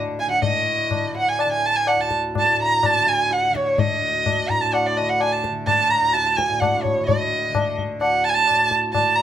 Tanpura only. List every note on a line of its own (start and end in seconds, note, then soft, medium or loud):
0.00 1.96 D2 medium
0.00 0.41 A2 medium
0.00 0.27 D3 medium
0.27 0.94 D3 medium
0.41 2.48 A2 medium
0.94 1.45 D3 medium
1.45 2.98 D3 medium
1.97 4.00 D2 medium
2.48 4.50 A2 medium
2.98 3.50 D3 medium
3.50 5.01 D3 medium
4.00 6.00 D2 medium
4.50 6.49 A2 medium
5.01 5.50 D3 medium
5.50 6.99 D3 medium
6.01 7.98 D2 medium
6.49 8.49 A2 medium
6.99 7.49 D3 medium
7.49 8.98 D3 medium
7.98 9.22 D2 medium
8.49 9.22 A2 medium
8.98 9.22 D3 medium